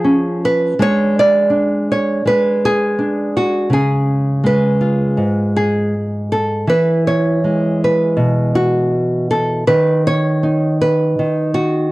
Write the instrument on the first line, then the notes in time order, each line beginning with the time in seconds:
nylon-string guitar
Already playing: F3 F4 G#4
0.04 C#4
0.45 B4
0.79 G#3 D4 G#4 C#5
1.19 D5
1.50 D4
1.92 C#5
2.25 G#3 B4
2.65 G#4
2.99 D4
3.37 F#4
3.70 C#3 G#4
4.44 G#3 B4
4.81 F4
5.17 G#2
5.57 G#4
6.32 A4
6.67 E3 B4
7.07 C#5
7.44 G#3
7.84 B4
8.17 B2
8.55 F#4
9.31 A4
9.67 D#3 B4
10.07 C#5
10.43 D#4
10.81 B4
11.19 D#3
11.54 F#4